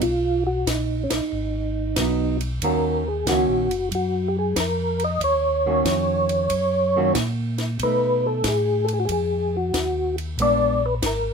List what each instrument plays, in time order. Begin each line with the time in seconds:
0.01 tonewheel organ B1 F4, kick, ride
0.47 tonewheel organ F#4
0.66 tonewheel organ A#1 D#4, kick, snare, hi-hat pedal, ride
1.04 tonewheel organ C#4
1.10 tonewheel organ A#1 D#4, snare, ride
1.32 tonewheel organ G#1
1.96 tonewheel organ B1, hollow-body jazz guitar F#3 B3 D#4, kick, snare, hi-hat pedal, ride
2.41 ride
2.62 tonewheel organ D#2 A#4, hollow-body jazz guitar D#3 A#3 C#4 F#4, kick, ride
3.08 tonewheel organ G#4
3.26 tonewheel organ C#2 F#4, hollow-body jazz guitar D#3 A#3 C#4 F#4, kick, snare, hi-hat pedal, ride
3.47 tonewheel organ A#1
3.70 tonewheel organ F#1, ride
3.91 tonewheel organ F#2 F#4, kick, ride
4.28 tonewheel organ G4
4.39 tonewheel organ G#4
4.56 tonewheel organ F2, kick, snare, hi-hat pedal, ride
4.60 tonewheel organ A#4
5.00 ride
5.04 tonewheel organ D#5
5.21 tonewheel organ D#2 C#5, kick, ride
5.66 hollow-body jazz guitar D#3 A#3 C#4 F#4
5.85 tonewheel organ F2, kick, snare, hi-hat pedal, ride
6.29 ride
6.50 tonewheel organ F#2, kick, ride
6.96 hollow-body jazz guitar D#3 A#3 C#4 F#4
7.14 tonewheel organ A#2, kick, snare, hi-hat pedal, ride
7.58 snare, ride
7.79 tonewheel organ B2 B4, hollow-body jazz guitar A3 D#4, kick, ride
8.26 tonewheel organ A4
8.44 tonewheel organ A2, kick, snare, hi-hat pedal, ride
8.48 tonewheel organ G#4
8.84 tonewheel organ A4, ride
8.93 tonewheel organ G#4
9.00 tonewheel organ F#4
9.05 tonewheel organ F2 G#4, kick, ride
9.12 tonewheel organ G#4
9.57 tonewheel organ F#4
9.74 tonewheel organ D#2, kick, snare, hi-hat pedal, ride
10.18 ride
10.38 tonewheel organ A#1, hollow-body jazz guitar G#3 B3 D4, kick, ride
10.42 tonewheel organ D5
10.86 tonewheel organ B4
11.02 tonewheel organ G#1 A#4, kick, snare, hi-hat pedal, ride